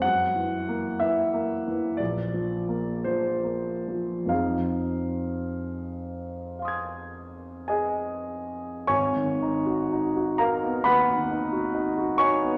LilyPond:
<<
  \new Staff \with { instrumentName = "Grand piano" } { \time 4/4 \key f \dorian \tempo 4 = 58 << { r1 | r2 <f'' c''' ees''' aes'''>2 | \key gis \dorian r1 | } \\ { ges''4 fes''4 d''4 c''4 | f''2. <aes' ees'' aes''>4 | <cis'' gis'' cis'''>4. <ais' eis'' ais''>8 <b' fis'' b''>4. <cis'' gis'' cis'''>8 | } >> }
  \new Staff \with { instrumentName = "Grand piano" } { \time 4/4 \key f \dorian \tuplet 3/2 { ges,8 fes8 bes8 fes8 bes8 fes8 bes,,8 f8 bes8 f8 bes8 f8 } | <f, f c' ees' aes'>1 | \key gis \dorian gis,,16 dis16 dis'16 fis'16 dis'16 fis'16 dis'16 b16 dis,16 dis16 dis'16 fis'16 dis'16 fis'16 dis'16 b16 | }
>>